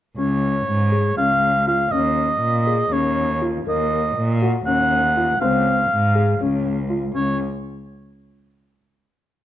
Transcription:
0.16 cello C#2, grand piano C#4, oboe C#5
0.67 cello G#2
0.92 grand piano G#4
1.17 cello C#2, grand piano C#4, oboe F5
1.67 grand piano F4, oboe F5
1.92 cello D#2, grand piano C#4, oboe D#5
2.41 cello A#2
2.67 grand piano G#4
2.91 cello D#2, grand piano C#4, oboe C#5
3.41 grand piano F4
3.67 cello D#2, grand piano A#3, oboe D#5
4.17 cello A#2
4.42 grand piano F#4
4.66 cello D#2, grand piano C#4, oboe F#5
5.16 grand piano F4
5.41 cello C#2, grand piano C4, oboe F5
5.92 cello G#2
6.15 grand piano G#4
6.41 cello C#2, grand piano C#4
6.90 grand piano F4
7.14 cello C#2, grand piano C#4, oboe C#5

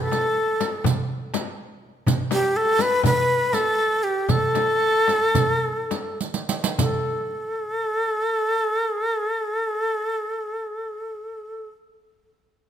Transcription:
0.01 shakuhachi A4
0.12 riq, darbuka tek, frame drum
0.61 riq, darbuka tek, frame drum
0.84 riq, frame drum, darbuka dum
1.09 darbuka ka
1.34 riq, darbuka tek, frame drum
1.57 darbuka ka
2.07 riq, darbuka dum, frame drum
2.31 shakuhachi G4, riq, darbuka tek, frame drum
2.56 shakuhachi A4
2.79 shakuhachi B4, riq, darbuka tek, frame drum
3.03 shakuhachi B4, riq, frame drum, darbuka dum
3.29 darbuka ka
3.53 shakuhachi A4, riq, darbuka tek, frame drum
3.79 darbuka ka
4.03 shakuhachi G4
4.29 shakuhachi A4, riq, frame drum, darbuka dum
4.55 riq, darbuka tek, frame drum
5.08 riq, darbuka tek, frame drum
5.35 riq, darbuka dum, frame drum
5.91 riq, darbuka tek, frame drum
6.21 riq
6.34 riq
6.49 riq
6.64 riq
6.79 shakuhachi A4, riq, frame drum, darbuka dum

